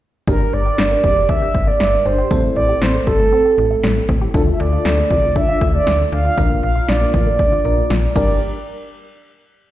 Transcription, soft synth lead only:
0.28 0.55 A#4 loud
0.53 1.03 D5 loud
1.04 1.31 D5 loud
1.29 1.69 E5 loud
1.68 2.07 D5 loud
2.06 2.56 C5 loud
2.57 2.83 D5 medium
2.82 3.07 C5 medium
3.07 4.05 A4 medium
4.35 4.43 A4 medium
4.53 4.62 E5 medium
4.60 5.10 D5 loud
5.11 5.34 D5 medium
5.36 5.72 E5 loud
5.75 6.10 D5 loud
6.13 6.60 F5 loud
6.64 6.90 F5 loud
6.89 7.14 D5 loud
7.14 8.12 D5 loud
8.16 8.39 D5 medium

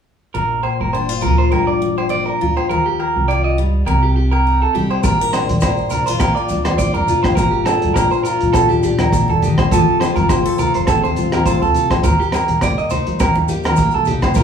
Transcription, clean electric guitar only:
0.34 0.63 A#4 medium
0.63 0.79 C5 medium
0.81 0.93 A#4 medium
0.93 1.21 C5 medium
1.22 1.38 A#4 medium
1.38 1.51 C5 medium
1.52 1.67 A#4 medium
1.67 1.96 D5 medium
1.98 2.10 C5 medium
2.10 2.25 D5 medium
2.26 2.54 A#4 medium
2.57 2.69 C5 medium
2.69 2.85 A#4 medium
2.86 2.98 G4 medium
2.99 3.27 A#4 medium
3.28 3.43 D5 medium
3.44 3.57 D#5 medium
3.87 4.02 A#4 medium
4.03 4.15 G4 medium
4.16 4.31 G4 medium
4.31 4.60 A#4 medium
4.62 4.74 A4 medium
4.75 4.90 G4 medium
4.90 5.03 C5 medium
5.04 5.32 A#4 medium
5.33 5.48 C5 medium
5.62 5.90 C5 medium
5.91 6.06 A#4 medium
6.06 6.19 C5 medium
6.20 6.35 A#4 medium
6.35 6.64 D5 medium
6.65 6.78 C5 medium
6.78 6.94 D5 medium
6.94 7.22 A#4 medium
7.23 7.35 C5 medium
7.35 7.52 A#4 medium
7.51 7.65 G4 medium
7.65 7.94 A4 medium
7.94 8.10 A#4 medium
8.11 8.23 C5 medium
8.23 8.52 A#4 medium
8.53 8.69 A4 medium
8.69 8.82 G4 medium
8.83 8.99 G4 medium
8.99 9.27 A#4 medium
9.30 9.42 A4 medium
9.43 9.57 G4 medium
9.59 9.71 C5 medium
9.72 9.99 A4 medium
10.00 10.15 C5 medium
10.16 10.28 A#4 medium
10.29 10.57 C5 medium
10.59 10.74 A#4 medium
10.75 10.87 C5 medium
10.87 11.02 A4 medium
11.04 11.31 C5 medium
11.33 11.45 A#4 medium
11.46 11.61 C5 medium
11.62 11.89 A4 medium
11.91 12.03 C5 medium
12.04 12.19 A#4 medium
12.20 12.32 G4 medium
12.32 12.60 A#4 medium
12.62 12.77 D5 medium
12.78 12.90 D#5 medium
12.91 13.18 C5 medium
13.20 13.35 A#4 medium
13.36 muted clean electric guitar stroke medium
13.49 13.64 G4 medium
13.65 13.93 A#4 medium
13.94 14.07 A4 medium
14.07 14.22 G4 medium
14.23 14.35 C5 medium
14.36 14.43 A#4 medium

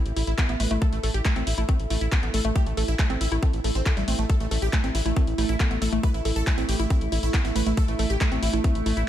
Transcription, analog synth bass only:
0.06 0.12 A1 medium
0.16 0.23 A1 loud
0.27 0.34 A1 medium
0.49 0.56 A1 medium
0.60 0.67 A1 loud
0.71 0.77 A1 medium
0.93 0.99 A1 medium
1.03 1.10 A1 loud
1.14 1.21 A1 medium
1.36 1.43 A1 medium
1.47 1.54 A1 loud
1.58 1.64 A1 medium
1.80 1.86 A1 medium
1.90 1.97 A1 loud
2.01 2.08 A1 medium
2.23 2.30 A1 medium
2.34 2.40 A1 loud
2.45 2.51 A1 medium
2.67 2.73 A1 medium
2.77 2.84 A1 loud
2.88 2.95 A1 medium
3.10 3.17 A1 medium
3.21 3.27 A1 loud
3.32 3.38 A1 medium
3.53 3.60 A1 medium
3.64 3.71 A1 loud
3.75 3.82 A1 medium
3.97 4.04 A1 medium
4.08 4.14 A1 loud
4.19 4.25 A1 medium
4.40 4.47 A1 medium
4.51 4.58 A1 loud
4.62 4.69 A1 medium
4.84 4.90 A1 medium
4.95 5.01 A1 loud
5.06 5.12 A1 medium
5.27 5.34 A1 medium
5.38 5.45 A1 loud
5.49 5.56 A1 medium
5.71 5.77 A1 medium
5.82 5.88 A1 loud
5.93 5.99 A1 medium
6.14 6.21 A1 medium
6.25 6.32 A1 loud
6.36 6.43 A1 medium
6.58 6.64 A1 medium
6.69 6.75 A1 loud
6.80 6.86 A1 medium
7.01 7.08 A1 medium
7.12 7.19 A1 loud
7.23 7.30 A1 medium
7.45 7.51 A1 medium
7.56 7.62 A1 loud
7.66 7.73 A1 medium
7.88 7.95 A1 medium
7.99 8.06 A1 loud
8.10 8.17 A1 loud
8.32 8.38 A1 medium
8.43 8.49 A1 loud
8.53 8.60 A1 medium
8.75 8.82 A1 medium
8.86 8.93 A1 loud
8.97 9.04 A1 medium

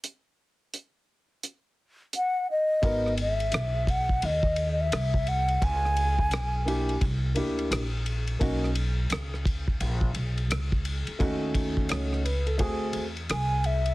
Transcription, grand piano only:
2.82 3.09 B3 medium
2.82 3.10 D#4 medium
2.82 3.10 F#4 medium
2.82 3.11 A#4 medium
6.65 6.93 A#3 medium
6.65 6.93 D4 medium
6.65 6.94 E4 medium
6.65 6.94 G4 medium
7.35 7.79 A#3 medium
7.35 7.80 D4 medium
7.35 7.80 E4 medium
7.35 7.80 G4 medium
8.39 8.67 A#3 medium
8.39 8.68 C#4 medium
8.39 8.68 D#4 medium
8.39 8.68 F#4 medium
11.19 12.19 A3 medium
11.19 12.19 C#4 medium
11.19 12.20 D#4 medium
11.19 12.20 F#4 medium
11.90 12.23 C#5 medium
12.25 12.45 B4 medium
12.46 12.80 A4 medium
12.58 13.02 A3 medium
12.58 13.03 C4 medium
12.58 13.03 F#4 medium
12.58 13.03 G#4 medium

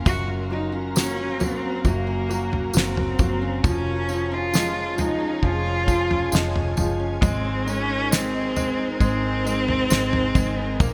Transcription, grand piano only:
0.06 0.49 F#3 medium
0.51 0.95 F#3 soft
0.96 1.39 F#3 medium
1.40 1.83 F#3 medium
1.85 2.28 F#3 medium
2.30 2.72 F#3 soft
2.74 3.18 F#3 medium
3.19 3.63 F#3 medium
3.63 4.08 F3 medium
4.09 4.52 F3 medium
4.53 4.96 F3 medium
4.98 5.41 F3 medium
5.43 5.85 F3 medium
5.87 6.31 F3 medium
6.32 6.76 F3 medium
6.77 7.21 F3 medium
7.21 7.65 G#3 medium
7.66 8.10 G#3 soft
8.11 8.55 G#3 medium
8.56 8.99 G#3 medium
9.01 9.44 G#3 medium
9.46 9.89 G#3 medium
9.90 10.33 G#3 medium
10.35 10.79 G#3 medium
10.80 10.93 A#3 medium

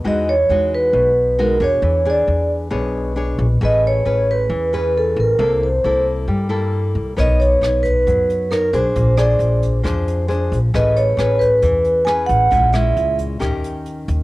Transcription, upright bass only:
0.05 0.46 E2 medium
0.49 0.91 E2 medium
0.93 1.56 B1 medium
1.60 1.81 E2 medium
1.82 2.24 E2 medium
2.27 2.69 E2 medium
2.71 3.34 B1 medium
3.39 3.59 A#1 medium
3.61 4.02 A1 medium
4.05 4.47 A1 medium
4.50 5.13 E2 medium
5.16 5.37 A1 medium
5.39 5.80 C2 medium
5.84 6.25 C2 medium
6.28 6.91 G2 medium
6.95 7.16 C2 medium
7.18 7.59 B1 medium
7.61 8.03 B1 medium
8.07 8.69 F#2 medium
8.73 8.94 B1 medium
8.96 9.37 A#1 medium
9.39 9.81 A#1 medium
9.85 10.47 F2 medium
10.52 10.72 A#1 medium
10.74 11.15 A1 medium
11.17 11.59 A1 medium
11.62 12.25 E2 medium
12.29 12.50 A1 medium
12.52 12.93 A#1 medium
12.97 13.38 C#2 medium
13.41 14.04 D#2 medium
14.08 14.23 D#2 medium

